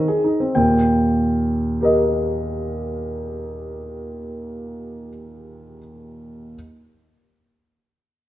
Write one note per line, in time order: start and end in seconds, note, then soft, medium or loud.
0.00 0.23 D#5 medium
0.08 0.25 G#4 soft
0.24 0.41 D#4 soft
0.40 0.56 C4 soft
0.55 5.10 D#2 soft
0.55 5.10 A#2 soft
0.55 5.09 G5 soft
1.81 5.78 G4 soft
1.81 5.79 A#4 soft
1.85 5.80 D#5 soft